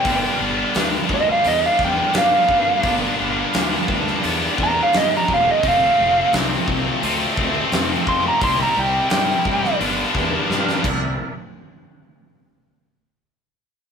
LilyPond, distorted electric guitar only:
\new Staff \with { instrumentName = "Distorted electric guitar" } { \clef bass \time 4/4 \key g \dorian \tempo 4 = 86 <g, d g b d'>2 <g, d g b d'>2 | <g, d g b d'>2 <g, d g b d'>2 | <f, c f a c'>2 <f, c f a c'>2 | <c g c' e'>2 <g, d g b d'>4. r8 |
r1 | }